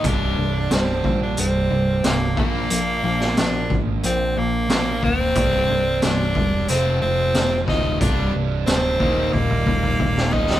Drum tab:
HH |x---x---x---x---|x---x---x---x---|x---x---x---x---|x---x-----------|
SD |----o-------o---|---oo-------o---|----o-------o-o-|----o--------o-o|
BD |o-----o-------o-|------o-------o-|o-----o-------o-|o-----o-ooooo-o-|